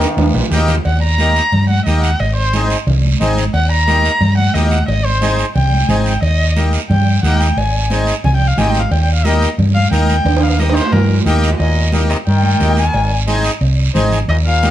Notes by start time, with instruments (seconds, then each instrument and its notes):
Already playing: trombone D#3
0.01 high timbale, short guiro
0.17 fingered electric bass D#2, cowbell, high conga, high timbale, long guiro
0.34 fingered electric bass A#1, low conga, low timbale
0.51 fingered electric bass D#2, accordion A#3 D#4 G4, low timbale, short guiro
0.68 low conga, low timbale, short guiro
0.85 fingered electric bass D#2, erhu F#5, cowbell, high conga, long guiro
1.03 erhu A#5
1.18 accordion A#3 D#4 G4, cowbell, high conga, short guiro
1.36 short guiro
1.52 fingered electric bass G2, cowbell, high conga, low conga, long guiro
1.69 erhu F#5, high conga
1.86 fingered electric bass D#2, accordion A#3 D#4 G4, erhu D#5, cowbell, high conga, short guiro
2.02 erhu F#5, short guiro
2.19 fingered electric bass G#1, erhu D#5, cowbell, high conga, long guiro
2.36 erhu C5
2.53 accordion C4 D#4 G#4, cowbell, high conga, short guiro
2.70 short guiro
2.87 fingered electric bass C2, cowbell, high conga, low conga, long guiro
3.04 high conga
3.20 fingered electric bass G#1, accordion C4 D#4 G#4, cowbell, high conga, low conga, short guiro
3.37 high conga, short guiro
3.54 fingered electric bass D#2, erhu F#5, cowbell, high conga, long guiro
3.71 erhu A#5
3.87 accordion A#3 D#4 G4, cowbell, high conga, short guiro
4.05 short guiro
4.21 fingered electric bass G2, cowbell, high conga, low conga, long guiro
4.38 erhu F#5, high conga
4.54 fingered electric bass D#2, accordion A#3 D#4 G4, erhu D#5, cowbell, high conga, low timbale, short guiro
4.71 erhu F#5, high conga, short guiro
4.88 fingered electric bass G#1, erhu D#5, cowbell, high conga, low conga, long guiro
5.05 erhu C5
5.21 accordion C4 D#4 G#4, cowbell, high conga, short guiro
5.39 short guiro
5.55 fingered electric bass C2, erhu G5, cowbell, high conga, low conga, long guiro
5.72 high conga
5.88 fingered electric bass G#1, accordion C4 D#4 G#4, erhu G#5, cowbell, high conga, low conga, short guiro
6.06 erhu G5, short guiro
6.22 fingered electric bass D#2, erhu D#5, cowbell, high conga, long guiro
6.56 accordion A#3 D#4 G4, cowbell, high conga, short guiro
6.73 short guiro
6.90 fingered electric bass G2, erhu G5, cowbell, high conga, low conga, long guiro
7.23 fingered electric bass D#2, accordion A#3 D#4 G4, erhu F#5, cowbell, high conga, short guiro
7.40 erhu G5, high conga, short guiro
7.57 fingered electric bass G#1, erhu G#5, cowbell, high conga, long guiro
7.90 accordion C4 D#4 G#4, cowbell, high conga, short guiro
8.07 short guiro
8.24 fingered electric bass C2, erhu G#5, cowbell, high conga, low conga, long guiro
8.36 erhu G5
8.47 erhu F5
8.58 fingered electric bass G#1, accordion C4 D#4 G4, erhu G#5, cowbell, high conga, low conga, low timbale, short guiro
8.70 erhu G5
8.74 high conga, short guiro
8.80 erhu F5
8.91 fingered electric bass D#2, erhu G5, cowbell, high conga, long guiro
9.03 erhu G5
9.14 erhu F5
9.25 accordion A#3 D#4 G4, erhu D#5, cowbell, high conga, short guiro
9.42 short guiro
9.58 fingered electric bass G2, cowbell, high conga, low conga, long guiro
9.75 erhu F5, high conga
9.91 fingered electric bass D#2, accordion A#3 D#4 A#4, erhu G5, cowbell, high conga, short guiro
10.09 high conga, short guiro
10.25 fingered electric bass D#2, cowbell, high conga, low conga, high timbale, long guiro
10.37 high timbale
10.43 erhu F5
10.47 high timbale
10.58 accordion A#3 D#4 G4, erhu D#5, cowbell, high conga, short guiro
10.69 high timbale
10.75 erhu C5, short guiro
10.81 low timbale
10.92 fingered electric bass G2, erhu A#4, cowbell, high conga, low conga, low timbale, long guiro
11.09 high conga
11.15 low timbale
11.26 fingered electric bass D#2, accordion A#3 D#4 G4, cowbell, high conga, short guiro
11.43 short guiro
11.48 low timbale
11.59 fingered electric bass D#2, trombone A#2, erhu D#5, cowbell, high conga, long guiro
11.92 accordion A#3 D#4 G4, high conga, short guiro
12.09 trombone C3, erhu D#5, short guiro
12.26 fingered electric bass G2, trombone D#3, erhu G5, cowbell, high conga, long guiro
12.43 high conga
12.60 fingered electric bass D#2, accordion A#3 D#4 G4, high conga, low timbale, short guiro
12.77 trombone D#3, erhu G#5, short guiro
12.94 fingered electric bass G#1, cowbell, high conga, long guiro
13.27 accordion C4 D#4 G#4, high conga, short guiro
13.45 short guiro
13.61 fingered electric bass C2, cowbell, high conga, long guiro
13.95 fingered electric bass G#1, accordion C4 D#4 G#4, high conga, low conga, short guiro
14.12 low conga, short guiro
14.28 fingered electric bass D#2, trombone A#2, erhu D#5, cowbell, high conga, long guiro
14.46 trombone A#2, erhu F5
14.63 accordion A#3 D#4 G4, high conga, short guiro